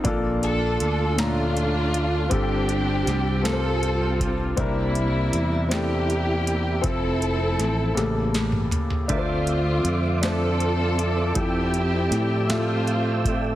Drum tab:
HH |x-x-x-x-x-x-|x-x-x-x-x-x-|x-x-x-x-x-x-|x-x-x-x-x-x-|
SD |------o-----|----o-o-----|------o-----|----o-o-o---|
T2 |------------|------------|------------|---------o--|
FT |------------|------------|------------|----------oo|
BD |o-----------|o---------o-|o-----------|o-----------|

HH |x-x-x-x-x-x-|x-x-x-x-x-x-|
SD |------o-----|----o-o-----|
T2 |------------|------------|
FT |------------|------------|
BD |o-----------|o---------o-|